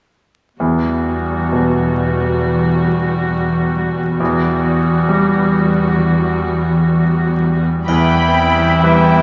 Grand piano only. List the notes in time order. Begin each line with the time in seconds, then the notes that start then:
0.60 E2
1.52 B2
4.20 E2
5.09 G3
7.89 E2
8.83 G3 E4 B4